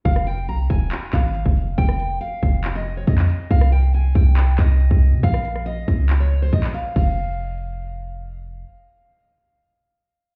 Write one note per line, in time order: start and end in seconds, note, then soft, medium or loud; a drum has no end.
0.05 0.50 F1 loud
0.05 0.25 F5 loud
0.05 kick loud
0.05 closed hi-hat medium
0.16 cross-stick loud
0.27 0.47 G5 medium
0.27 closed hi-hat medium
0.38 closed hi-hat medium
0.48 0.69 C2 loud
0.48 0.68 A#5 medium
0.48 closed hi-hat medium
0.70 0.91 D#1 loud
0.70 1.11 G#5 medium
0.70 kick loud
0.70 closed hi-hat medium
0.91 clap loud
0.91 closed hi-hat medium
1.13 1.44 G#1 loud
1.13 1.74 F5 medium
1.13 kick medium
1.13 clap loud
1.13 closed hi-hat medium
1.35 closed hi-hat medium
1.46 1.77 F1 loud
1.46 kick medium
1.57 open hi-hat medium
1.78 2.19 F1 loud
1.78 2.18 G5 loud
1.78 kick loud
1.78 closed hi-hat medium
1.89 cross-stick loud
2.00 closed hi-hat medium
2.21 2.72 F5 medium
2.21 closed hi-hat medium
2.43 3.05 F1 loud
2.43 kick loud
2.43 closed hi-hat medium
2.64 clap loud
2.64 closed hi-hat medium
2.75 2.95 D#5 medium
2.97 3.07 C#5 medium
3.07 3.28 F2 loud
3.07 3.48 D#5 medium
3.07 kick loud
3.07 closed hi-hat medium
3.18 clap loud
3.29 closed hi-hat medium
3.51 4.13 C2 loud
3.51 3.70 F5 loud
3.51 kick loud
3.51 closed hi-hat medium
3.61 cross-stick loud
3.72 3.92 G5 medium
3.72 closed hi-hat medium
3.83 closed hi-hat medium
3.94 4.14 G#5 medium
3.94 closed hi-hat medium
4.15 4.57 C2 loud
4.15 4.56 G5 medium
4.15 kick loud
4.15 closed hi-hat medium
4.37 clap loud
4.37 closed hi-hat medium
4.58 4.90 C2 loud
4.58 5.19 D#5 medium
4.58 kick medium
4.58 clap loud
4.58 closed hi-hat medium
4.80 closed hi-hat medium
4.91 5.14 C2 loud
4.91 kick medium
5.02 open hi-hat medium
5.13 5.23 C3 loud
5.23 5.85 A#1 loud
5.23 5.64 F5 loud
5.23 kick loud
5.23 closed hi-hat medium
5.34 cross-stick loud
5.45 closed hi-hat medium
5.56 cross-stick medium
5.66 6.17 D#5 medium
5.66 closed hi-hat medium
5.88 6.50 C#2 loud
5.88 kick loud
5.88 closed hi-hat loud
6.09 clap loud
6.09 closed hi-hat medium
6.20 6.40 C#5 medium
6.42 6.52 C5 medium
6.53 6.73 A#1 loud
6.53 6.73 D#5 medium
6.53 kick loud
6.53 closed hi-hat medium
6.60 clap loud
6.60 closed hi-hat medium
6.67 closed hi-hat medium
6.74 6.94 F5 medium
6.74 closed hi-hat medium
6.96 8.65 F1 loud
6.96 8.21 F5 medium
6.96 kick loud
6.96 crash medium